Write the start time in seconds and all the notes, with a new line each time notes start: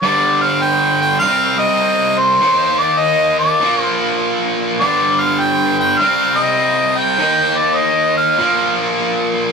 0.02 G2 D3 G3 D5
0.42 F5
0.62 G5
1.01 G5
1.19 C3 G3 F5
1.24 C4
1.60 D#5
2.19 C5
2.41 D#3 A#3 D#4
2.78 D5
2.99 D#5
3.39 D5
3.60 A#2 F3 A#3
3.83 C5
4.80 G2 D3 G3 D5
5.20 F5
5.40 G5
5.79 G5
5.98 C3 G3 C4 F5
6.37 D#5
6.97 G5
7.18 D#3 A#3 D#4
7.57 D5
7.76 D#5
8.17 F5
8.38 A#2 F3 A#3